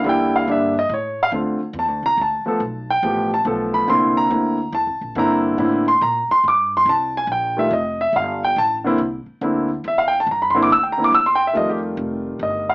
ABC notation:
X:1
M:3/4
L:1/16
Q:"Swing" 1/4=141
K:Cmix
V:1 name="Grand piano"
g2 f2 e2 _e2 ^c2 ^e2 | z4 a2 b2 a4- | a2 g4 a2 z2 =b2 | c'2 b6 a4 |
b2 z4 c'2 b2 c'2 | d'2 c'2 a2 _a2 g2 e2 | _e2 =e2 f2 g2 a2 z2 | z8 e f g a |
b =b c' d' e' g _b d' e' c' g e | _e G z6 e2 f2 |]
V:2 name="Grand piano"
[D,G,B,E]4 [D,G,B,D]2 z6 | [D,A,CF]2 z8 [F,A,=B,A]2 | z4 [F,A,=B,G]2 z2 [F,A,B,A]4 | [D,B,CE]4 [D,B,CE]2 z6 |
[D,B,CE]4 [D,B,CE]2 z6 | z8 z2 [_E,G,A,F]2 | z8 z2 [D,B,CE]2 | z4 [D,B,CE]2 z6 |
z2 [D,B,CE]2 z2 [D,B,CE]2 z4 | [_E,G,A,F]8- [E,G,A,F]2 z2 |]
V:3 name="Upright bass" clef=bass
E,,4 G,,4 A,,4 | D,,2 z2 (3E,,2 D,,2 C,,2 D,,2 z2 | =B,,,4 A,,,4 B,,,4 | C,,4 D,,4 (3E,,2 C,,2 B,,,2 |
G,,4 A,,4 B,,2 z2 | G,,4 C,,4 B,,,4 | F,,,4 G,,,4 A,,,4 | C,,2 z2 D,,4 E,,4 |
G,,4 D,,4 E,,4 | F,,4 F,,,4 G,,,4 |]